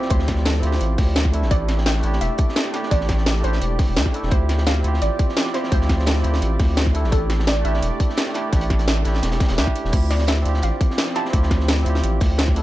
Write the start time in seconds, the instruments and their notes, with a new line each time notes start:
Already playing: analog synth pad F3 C4 G4 D5, tine electric piano C4 E4 F4 G4, impact
0.02 snare
0.07 sub bass D2, tine electric piano C4 E4, synth pluck C5, kick, closed hi-hat
0.12 tine electric piano F4 G4
0.19 snare
0.28 kick, snare, closed hi-hat
0.37 snare
0.45 synth pluck A4, snare, closed hi-hat
0.55 snare
0.60 sub bass D2, tine electric piano C4 E4, closed hi-hat
0.64 tine electric piano F4 G4
0.72 snare
0.81 sub bass A1, closed hi-hat
0.98 sub bass D2, kick, snare, closed hi-hat, open hi-hat
1.16 snare, closed hi-hat
1.25 kick, snare
1.32 tine electric piano A3 D4 E4 A4, analog synth pad A3 D5, closed hi-hat
1.42 sub bass A1, snare
1.47 sub bass A1, tine electric piano A3 D4, synth pluck D5, kick, closed hi-hat
1.51 tine electric piano E4 G4, closed hi-hat
1.69 snare, closed hi-hat
1.78 snare
1.86 synth pluck G5, snare, closed hi-hat
1.95 snare
2.00 sub bass A1, tine electric piano A3 D4, closed hi-hat
2.05 tine electric piano E4 G4
2.13 snare
2.21 sub bass E1, synth pluck E5, closed hi-hat
2.38 kick, closed hi-hat
2.49 snare
2.56 snare, closed hi-hat
2.65 snare
2.72 tine electric piano A3 D4 E4 G4, snare, closed hi-hat
2.83 snare
2.88 sub bass A1, tine electric piano A3 D4, synth pluck D5, kick, closed hi-hat
2.92 tine electric piano E4 G4, closed hi-hat
3.01 snare
3.09 kick, snare, closed hi-hat
3.18 snare
3.26 snare, closed hi-hat
3.36 snare
3.40 sub bass A1, tine electric piano A3 D4, synth pluck C5, closed hi-hat
3.45 tine electric piano E4 G4
3.53 snare
3.61 sub bass E1, closed hi-hat
3.79 kick, snare, closed hi-hat, open hi-hat
3.88 sub bass E1
3.96 sub bass D2, snare, closed hi-hat
4.06 kick, snare
4.12 tine electric piano A3 D4 E4 A4, closed hi-hat
4.23 sub bass E1, snare
4.28 sub bass D2, analog synth pad F3 C4 D5, tine electric piano C4 E4, synth pluck C5, kick, closed hi-hat
4.33 tine electric piano F4 G4
4.49 snare, closed hi-hat
4.58 snare
4.67 synth pluck F5, snare, closed hi-hat
4.76 snare
4.81 sub bass D2, tine electric piano C4 E4, closed hi-hat
4.85 tine electric piano F4 G4
4.94 snare
5.02 sub bass A1, synth pluck D5, closed hi-hat
5.19 kick, closed hi-hat
5.29 snare
5.36 snare, closed hi-hat
5.46 snare
5.53 tine electric piano C4 E4 F4 G4, synth pluck C5, snare, closed hi-hat
5.64 snare
5.69 sub bass D2, tine electric piano C4 E4, synth pluck C5, kick, closed hi-hat
5.73 tine electric piano F4 G4
5.81 snare
5.89 kick, snare, closed hi-hat
5.99 snare
6.06 synth pluck A4, snare, closed hi-hat
6.16 snare
6.21 sub bass D2, tine electric piano C4 E4, closed hi-hat
6.26 tine electric piano F4 G4
6.34 snare
6.42 sub bass A1, closed hi-hat
6.59 sub bass D2, kick, snare, closed hi-hat, open hi-hat
6.77 snare, closed hi-hat
6.86 kick, snare
6.93 tine electric piano A3 D4 E4 A4, analog synth pad A3 D5, closed hi-hat
7.04 sub bass A1, snare
7.09 sub bass A1, tine electric piano A3 D4, synth pluck A4, kick, closed hi-hat
7.13 tine electric piano E4 G4
7.30 snare, closed hi-hat
7.40 snare
7.47 synth pluck D5, snare, closed hi-hat
7.56 snare
7.61 sub bass A1, tine electric piano A3 D4, synth pluck E5, closed hi-hat
7.66 tine electric piano E4 G4
7.74 snare
7.82 sub bass E1, closed hi-hat
8.00 kick, closed hi-hat
8.09 snare
8.17 snare, closed hi-hat
8.26 snare
8.33 tine electric piano A3 D4 E4 G4, snare, closed hi-hat
8.49 sub bass A1, tine electric piano A3 D4, kick, snare, closed hi-hat
8.54 tine electric piano E4 G4
8.61 closed hi-hat
8.70 kick, snare, closed hi-hat
8.79 snare, closed hi-hat
8.88 snare, closed hi-hat
8.97 snare
9.02 sub bass A1, tine electric piano A3 D4, closed hi-hat
9.06 tine electric piano E4 G4, snare
9.15 snare
9.23 sub bass E1, snare, closed hi-hat
9.32 snare, closed hi-hat
9.40 kick, snare, closed hi-hat
9.49 sub bass E1, snare, closed hi-hat
9.56 sub bass D2, tine electric piano A3 D4 E4 G4, snare, closed hi-hat
9.67 kick, snare
9.76 closed hi-hat
9.85 sub bass E1, snare
9.90 sub bass D2, analog synth pad F3 C4 G4 D5, tine electric piano C4 E4, kick, closed hi-hat, crash
9.94 tine electric piano F4 G4
10.10 synth pluck D5, snare, closed hi-hat
10.19 snare
10.27 synth pluck E5, snare, closed hi-hat
10.37 snare
10.42 sub bass D2, tine electric piano C4 D4, closed hi-hat
10.47 tine electric piano F4 G4
10.54 snare
10.62 sub bass A1, synth pluck F5, closed hi-hat
10.81 kick, closed hi-hat
10.91 snare
10.98 snare, closed hi-hat
11.07 snare
11.14 tine electric piano C4 E4 F4 G4, synth pluck A5, snare, closed hi-hat
11.25 snare
11.30 sub bass D2, tine electric piano C4 E4, kick, closed hi-hat
11.35 tine electric piano F4 G4
11.43 snare
11.50 kick, snare, closed hi-hat
11.60 snare
11.68 snare, closed hi-hat
11.77 snare
11.83 sub bass D2, tine electric piano C4 E4, closed hi-hat
11.87 tine electric piano F4 G4
11.95 snare
12.03 sub bass A1, closed hi-hat
12.20 sub bass D2, kick, snare, closed hi-hat, open hi-hat
12.38 snare, closed hi-hat
12.47 kick, snare
12.55 tine electric piano A3 D4 E4 A4, analog synth pad A3 D5, closed hi-hat